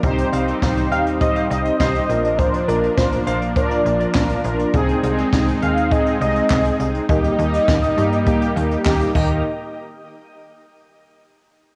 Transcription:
<<
  \new Staff \with { instrumentName = "Analog synth lead" } { \time 4/4 \key ees \major \tempo 4 = 102 r4. f''8 ees''8 ees''4. | c''8 bes'8 c''8 c''8 d''4. r8 | r4. f''8 ees''8 ees''4 r8 | ees''2. r4 |
r1 | }
  \new Staff \with { instrumentName = "Grand piano" } { \time 4/4 \key ees \major r8 f''16 r8. g''8 r16 f''16 r16 ees''16 c''8. r16 | r8 d''16 r8. f''8 r16 d''16 r16 d''16 r4 | r1 | r2. r8 ees''8 |
r1 | }
  \new Staff \with { instrumentName = "Analog polysynth" } { \time 4/4 \key ees \major <ees' g' c''>8 <ees' g' c''>8 <ees' g' c''>8 <ees' g' c''>8 <ees' g' c''>8 <ees' g' c''>8 <ees' g' c''>8 <d' f' bes'>8~ | <d' f' bes'>8 <d' f' bes'>8 <d' f' bes'>8 <d' f' bes'>8 <d' f' bes'>8 <d' f' bes'>8 <d' f' bes'>8 <d' f' bes'>8 | <c' ees' aes'>8 <c' ees' aes'>8 <c' ees' aes'>8 <c' ees' aes'>8 <c' ees' aes'>8 <c' ees' aes'>8 <c' ees' aes'>8 <c' ees' aes'>8 | <bes ees' g'>8 <bes ees' g'>8 <bes ees' g'>8 <bes ees' g'>8 <bes ees' g'>8 <bes ees' g'>8 <bes ees' g'>8 <bes ees' g'>8 |
r1 | }
  \new Staff \with { instrumentName = "Analog synth pad" } { \time 4/4 \key ees \major <g c' ees'>2.~ <g c' ees'>8 <f bes d'>8~ | <f bes d'>1 | <aes c'>1 | <g bes ees'>2.~ <g bes ees'>8 <ees ees' g' bes' bes''>8 |
r1 | }
  \new Staff \with { instrumentName = "FM bass" } { \clef bass \time 4/4 \key ees \major c,8 c,8 c,8 ees,8. r16 c,8 c,8 bes,,8~ | bes,,8 bes,,8 bes,,8 bes,,8. r16 bes,,8 bes,,8 bes,,8 | c,8 c,8 c,8 ees,8. r16 c,8 c,8 c,8 | ees,8 ees,8 ees,8 g,8. r16 ees,8 ees,8 ees,8 |
r1 | }
  \new DrumStaff \with { instrumentName = "Drums" } \drummode { \time 4/4 <hh bd>16 hh16 hh16 hh16 <bd sn>16 hh16 hh16 hh16 <hh bd>16 hh16 hh16 hh16 <bd sn>16 hh16 hh16 hh16 | <hh bd>16 hh16 hh16 hh16 <bd sn>16 hh16 hh16 hh16 <hh bd>16 hh16 hh16 hh16 <hc bd sn>16 hh16 hh16 hh16 | <hh bd>16 hh16 hh16 hh16 <bd sn>16 hh16 hh16 hh16 <hh bd>16 hh16 hh16 hh16 <hc bd sn>16 hh16 hh16 hh16 | <hh bd>16 hh16 hh16 hh16 <bd sn>16 hh16 hh16 hh16 <hh bd>16 hh16 hh16 hh16 <hc bd sn>16 hh16 <cymc bd>8 |
r4 r4 r4 r4 | }
>>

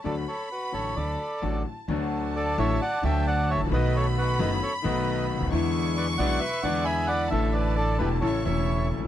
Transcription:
<<
  \new Staff \with { instrumentName = "Violin section" } { \time 4/4 \key d \major \tempo 4 = 132 b''2. a''4 | a''1 | b''1 | cis'''2. b''4 |
a''2 cis'''4. r8 | }
  \new Staff \with { instrumentName = "Bandoneon" } { \time 4/4 \key d \major <a' d''>8 <a' cis''>8 <fis' b'>8 <a' cis''>8 <a' d''>4. r8 | r4 <a' d''>8 <cis'' e''>8 <d'' fis''>8 <e'' g''>8 <d'' fis''>8 <cis'' e''>8 | <b' dis''>8 <a' cis''>8 <fis' b'>8 <b' dis''>8 <a' cis''>8 <b' dis''>4 r8 | r4 <b' d''>8 <d'' fis''>8 <b' e''>8 <d'' fis''>8 <e'' gis''>8 <d'' fis''>8 |
<a' e''>8 <b' d''>8 <a' d''>8 <g' b'>8 <a' cis''>8 <cis'' e''>4 r8 | }
  \new Staff \with { instrumentName = "Bandoneon" } { \time 4/4 \key d \major r1 | <d' fis' a'>4. <d' fis' a'>8 r8 <d' fis' a'>4. | <b dis' a'>4. <b dis' a'>8 r8 <b dis' a'>4. | <d' e' gis'>4. <d' e' gis'>8 r8 <d' e' gis'>4. |
<d' e' a'>4. <d' e' a'>8 <cis' e' a'>8 <cis' e' a'>4. | }
  \new Staff \with { instrumentName = "Grand piano" } { \clef bass \time 4/4 \key d \major << { <d, d fis a fis'>8 r4 <a,, a, d fis a fis'>8 <d, d fis a fis'>8 r8 <a,, a, d fis a fis'>8 r8 | <d, d fis a fis'>4. <a,, a, d fis a fis'>8 r8 <d, d fis a fis'>4. | <b,, b, dis a b fis'>4. <fis,, fis, dis a b fis'>8 r8 <b,, b, dis a b fis'>4. | <e, d e gis b e'>4. <b,, b, d gis b e'>8 r8 <e, d e gis b e'>4. |
<a,, a, d e a e'>4. <e,, e, d e a e'>8 <a,, a, cis e a e'>8 <e,, e, cis e a e'>4. | } \\ { r1 | r2. r8 r32 gis,,32 a,,32 bes,,32 | r2. r8 r32 cis,32 d,32 dis,32 | r1 |
r2. r8 r32 gis,,32 a,,32 r32 | } >> }
  \new Staff \with { instrumentName = "Upright bass" } { \clef bass \time 4/4 \key d \major d,16. r4 r32 a,,16. r32 d,16. r8 r32 a,,16. r8 r32 | d,4~ d,16. r32 a,,16. r8 r32 d,4~ d,32 gis,,32 a,,32 bes,,32 | b,,4~ b,,16. r32 fis,,16. r8 r32 b,,4~ b,,32 cis,32 d,32 dis,32 | e,4~ e,16. r32 b,,16. r8 r32 e,4~ e,16. r32 |
a,,4~ a,,16. r32 e,,16. r32 a,,16. r32 e,,4~ e,,32 gis,,32 a,,32 r32 | }
>>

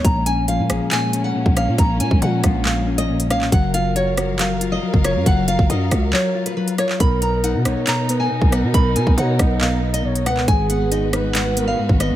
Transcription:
<<
  \new Staff \with { instrumentName = "Nylon-string guitar" } { \time 4/4 \key bes \phrygian \tempo 4 = 138 bes''8 aes''8 f''4 aes''8. ges''8. f''8 | bes''8 aes''8 ges''4 f''8. ees''8. f''8 | ges''8 f''8 des''4 f''8. ees''8. des''8 | ges''8 f''8 ees''4 des''8. ces''16 ces''8 des''8 |
b''8 ais''8 fis''4 ais''8. aes''8. fis''8 | b''8 aes''8 fis''4 f''8. dis''8. fis''8 | aes''8 ges''8 ees''4 ges''8. f''8. ees''8 | }
  \new Staff \with { instrumentName = "Soft synth lead" } { \time 4/4 \key bes \phrygian r1 | r1 | r1 | r1 |
ais'4. des''4 b'8 r4 | ais'4 des''8 dis''4. des''8 b'8 | aes'4. ces''4 bes'8 r4 | }
  \new Staff \with { instrumentName = "String section" } { \time 4/4 \key bes \phrygian <aes bes des'>1~ | <aes bes des'>1 | <ges bes' f''>1~ | <ges bes' f''>1 |
<b dis' ais'>1~ | <b dis' ais'>1 | <aes ges' ces''>1 | }
  \new Staff \with { instrumentName = "Clean electric guitar" } { \time 4/4 \key bes \phrygian bes,8 des'8 f8 aes'8 bes,8 des'8 bes,8 des'8 | bes,8 des'8 f8 f'8 bes,8 des'8 bes,8 des'8 | ges8 f'8 ges'8 ges'8 ges8 f'8 ges8 f'8 | ges8 f'8 ges'8 ges'8 ges8 f'8 ges8 f'8 |
b,8 b8 dis'8 dis'8 b,8 b8 b,8 b8 | b,8 b8 dis'8 dis'8 b,8 b8 b,8 b8 | aes,8 ces'8 ees'8 ees'8 aes,8 ces'8 aes,8 ces'8 | }
  \new Staff \with { instrumentName = "808-style bass" } { \clef bass \time 4/4 \key bes \phrygian bes,,4~ bes,,16 bes,16 bes,,16 r4. bes,,8 bes,16 | bes,,8 bes,16 bes,,16 bes,8 bes,,2 ces,8 | ges,,2. r16 ges,,8 ges,16 | ges,,8. ges,,16 ges,8 des,8 r2 |
b,,4~ b,,16 b,16 b,,16 r4. b,,8 b,16 | b,,8 b,16 b,,16 b,8 b,,2 des,8 | aes,,2. r16 aes,,8 aes,16 | }
  \new DrumStaff \with { instrumentName = "Drums" } \drummode { \time 4/4 <hh bd>8 hh8 hh8 <hh ss>8 <hc hh>8 hh8 r16 bd16 <hh ss>8 | <hh bd>8 hh16 bd16 hh8 <hh bd ss>8 hc8. hh16 r16 hh16 <hh ss>16 hc16 | <hh bd>8 hh8 hh8 <hh ss>8 <hc hh>8 hh8 r16 bd16 <hh ss>8 | <hh bd>8 hh16 bd16 hh8 <hh bd ss>8 hc8. hh16 r16 hh16 <hh ss>16 hc16 |
<hh bd>8 hh8 hh8 <hh ss>8 <hc hh>8 hh8 r16 bd16 <hh ss>8 | <hh bd>8 hh16 bd16 hh8 <hh bd ss>8 hc8. hh16 r16 hh16 <hh ss>16 hc16 | <hh bd>8 hh8 hh8 <hh ss>8 <hc hh>8 hh8 r16 bd16 <hh ss>8 | }
>>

